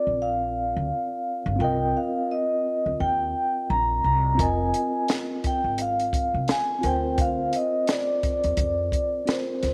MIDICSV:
0, 0, Header, 1, 5, 480
1, 0, Start_track
1, 0, Key_signature, -3, "minor"
1, 0, Tempo, 697674
1, 1103, Time_signature, 4, 2, 24, 8
1, 6699, End_track
2, 0, Start_track
2, 0, Title_t, "Vibraphone"
2, 0, Program_c, 0, 11
2, 0, Note_on_c, 0, 74, 89
2, 151, Note_on_c, 0, 77, 102
2, 162, Note_off_c, 0, 74, 0
2, 1109, Note_on_c, 0, 79, 99
2, 1136, Note_off_c, 0, 77, 0
2, 1353, Note_off_c, 0, 79, 0
2, 1354, Note_on_c, 0, 77, 83
2, 1592, Note_on_c, 0, 75, 96
2, 1595, Note_off_c, 0, 77, 0
2, 2040, Note_off_c, 0, 75, 0
2, 2066, Note_on_c, 0, 79, 108
2, 2517, Note_off_c, 0, 79, 0
2, 2547, Note_on_c, 0, 82, 101
2, 2768, Note_off_c, 0, 82, 0
2, 2790, Note_on_c, 0, 82, 94
2, 3032, Note_on_c, 0, 80, 93
2, 3033, Note_off_c, 0, 82, 0
2, 3480, Note_off_c, 0, 80, 0
2, 3761, Note_on_c, 0, 79, 91
2, 3976, Note_off_c, 0, 79, 0
2, 4001, Note_on_c, 0, 77, 106
2, 4477, Note_on_c, 0, 80, 102
2, 4486, Note_off_c, 0, 77, 0
2, 4717, Note_off_c, 0, 80, 0
2, 4720, Note_on_c, 0, 79, 93
2, 4935, Note_off_c, 0, 79, 0
2, 4959, Note_on_c, 0, 77, 108
2, 5198, Note_off_c, 0, 77, 0
2, 5201, Note_on_c, 0, 75, 88
2, 5416, Note_off_c, 0, 75, 0
2, 5433, Note_on_c, 0, 74, 94
2, 6394, Note_on_c, 0, 72, 83
2, 6416, Note_off_c, 0, 74, 0
2, 6699, Note_off_c, 0, 72, 0
2, 6699, End_track
3, 0, Start_track
3, 0, Title_t, "Tine electric piano"
3, 0, Program_c, 1, 4
3, 0, Note_on_c, 1, 60, 66
3, 0, Note_on_c, 1, 65, 58
3, 0, Note_on_c, 1, 70, 58
3, 0, Note_on_c, 1, 74, 72
3, 1058, Note_off_c, 1, 60, 0
3, 1067, Note_off_c, 1, 65, 0
3, 1073, Note_on_c, 1, 60, 65
3, 1076, Note_off_c, 1, 70, 0
3, 1092, Note_on_c, 1, 65, 62
3, 1108, Note_off_c, 1, 74, 0
3, 1111, Note_on_c, 1, 70, 60
3, 1129, Note_on_c, 1, 75, 73
3, 2980, Note_off_c, 1, 60, 0
3, 2990, Note_off_c, 1, 65, 0
3, 2992, Note_on_c, 1, 60, 68
3, 2999, Note_off_c, 1, 70, 0
3, 3008, Note_off_c, 1, 75, 0
3, 3010, Note_on_c, 1, 65, 62
3, 3026, Note_on_c, 1, 70, 56
3, 3045, Note_on_c, 1, 75, 69
3, 4660, Note_off_c, 1, 60, 0
3, 4669, Note_off_c, 1, 65, 0
3, 4669, Note_on_c, 1, 60, 59
3, 4677, Note_off_c, 1, 70, 0
3, 4686, Note_off_c, 1, 75, 0
3, 4686, Note_on_c, 1, 65, 58
3, 4705, Note_on_c, 1, 70, 54
3, 4722, Note_on_c, 1, 72, 69
3, 6338, Note_off_c, 1, 60, 0
3, 6347, Note_off_c, 1, 65, 0
3, 6356, Note_off_c, 1, 70, 0
3, 6365, Note_off_c, 1, 72, 0
3, 6368, Note_on_c, 1, 60, 50
3, 6375, Note_on_c, 1, 65, 43
3, 6385, Note_on_c, 1, 70, 47
3, 6394, Note_on_c, 1, 72, 54
3, 6699, Note_off_c, 1, 60, 0
3, 6699, Note_off_c, 1, 65, 0
3, 6699, Note_off_c, 1, 70, 0
3, 6699, Note_off_c, 1, 72, 0
3, 6699, End_track
4, 0, Start_track
4, 0, Title_t, "Upright bass"
4, 0, Program_c, 2, 32
4, 47, Note_on_c, 2, 34, 73
4, 499, Note_off_c, 2, 34, 0
4, 526, Note_on_c, 2, 38, 86
4, 613, Note_off_c, 2, 38, 0
4, 1003, Note_on_c, 2, 31, 93
4, 1092, Note_off_c, 2, 31, 0
4, 1100, Note_on_c, 2, 36, 101
4, 1319, Note_off_c, 2, 36, 0
4, 1967, Note_on_c, 2, 38, 81
4, 2054, Note_off_c, 2, 38, 0
4, 2066, Note_on_c, 2, 39, 93
4, 2282, Note_off_c, 2, 39, 0
4, 2545, Note_on_c, 2, 34, 98
4, 2762, Note_off_c, 2, 34, 0
4, 2781, Note_on_c, 2, 36, 90
4, 2999, Note_off_c, 2, 36, 0
4, 3022, Note_on_c, 2, 29, 107
4, 3240, Note_off_c, 2, 29, 0
4, 3881, Note_on_c, 2, 32, 76
4, 4336, Note_off_c, 2, 32, 0
4, 4365, Note_on_c, 2, 36, 84
4, 4453, Note_off_c, 2, 36, 0
4, 4704, Note_on_c, 2, 38, 99
4, 5156, Note_off_c, 2, 38, 0
4, 5808, Note_on_c, 2, 39, 84
4, 5894, Note_off_c, 2, 39, 0
4, 5898, Note_on_c, 2, 41, 90
4, 6118, Note_off_c, 2, 41, 0
4, 6625, Note_on_c, 2, 38, 83
4, 6699, Note_off_c, 2, 38, 0
4, 6699, End_track
5, 0, Start_track
5, 0, Title_t, "Drums"
5, 3021, Note_on_c, 9, 36, 101
5, 3021, Note_on_c, 9, 42, 85
5, 3089, Note_off_c, 9, 42, 0
5, 3090, Note_off_c, 9, 36, 0
5, 3261, Note_on_c, 9, 42, 69
5, 3329, Note_off_c, 9, 42, 0
5, 3498, Note_on_c, 9, 42, 79
5, 3508, Note_on_c, 9, 38, 101
5, 3567, Note_off_c, 9, 42, 0
5, 3577, Note_off_c, 9, 38, 0
5, 3743, Note_on_c, 9, 42, 78
5, 3744, Note_on_c, 9, 36, 86
5, 3811, Note_off_c, 9, 42, 0
5, 3813, Note_off_c, 9, 36, 0
5, 3977, Note_on_c, 9, 42, 90
5, 4045, Note_off_c, 9, 42, 0
5, 4125, Note_on_c, 9, 42, 52
5, 4194, Note_off_c, 9, 42, 0
5, 4217, Note_on_c, 9, 36, 85
5, 4223, Note_on_c, 9, 42, 68
5, 4286, Note_off_c, 9, 36, 0
5, 4292, Note_off_c, 9, 42, 0
5, 4457, Note_on_c, 9, 42, 71
5, 4466, Note_on_c, 9, 38, 107
5, 4526, Note_off_c, 9, 42, 0
5, 4535, Note_off_c, 9, 38, 0
5, 4701, Note_on_c, 9, 42, 82
5, 4770, Note_off_c, 9, 42, 0
5, 4939, Note_on_c, 9, 42, 83
5, 4941, Note_on_c, 9, 36, 108
5, 5007, Note_off_c, 9, 42, 0
5, 5009, Note_off_c, 9, 36, 0
5, 5179, Note_on_c, 9, 42, 74
5, 5248, Note_off_c, 9, 42, 0
5, 5418, Note_on_c, 9, 42, 80
5, 5427, Note_on_c, 9, 38, 100
5, 5486, Note_off_c, 9, 42, 0
5, 5496, Note_off_c, 9, 38, 0
5, 5664, Note_on_c, 9, 42, 79
5, 5665, Note_on_c, 9, 36, 87
5, 5733, Note_off_c, 9, 36, 0
5, 5733, Note_off_c, 9, 42, 0
5, 5804, Note_on_c, 9, 42, 50
5, 5873, Note_off_c, 9, 42, 0
5, 5896, Note_on_c, 9, 42, 85
5, 5898, Note_on_c, 9, 36, 90
5, 5965, Note_off_c, 9, 42, 0
5, 5967, Note_off_c, 9, 36, 0
5, 6138, Note_on_c, 9, 36, 87
5, 6145, Note_on_c, 9, 42, 62
5, 6207, Note_off_c, 9, 36, 0
5, 6214, Note_off_c, 9, 42, 0
5, 6381, Note_on_c, 9, 42, 73
5, 6390, Note_on_c, 9, 38, 117
5, 6449, Note_off_c, 9, 42, 0
5, 6459, Note_off_c, 9, 38, 0
5, 6623, Note_on_c, 9, 42, 78
5, 6627, Note_on_c, 9, 38, 34
5, 6692, Note_off_c, 9, 42, 0
5, 6696, Note_off_c, 9, 38, 0
5, 6699, End_track
0, 0, End_of_file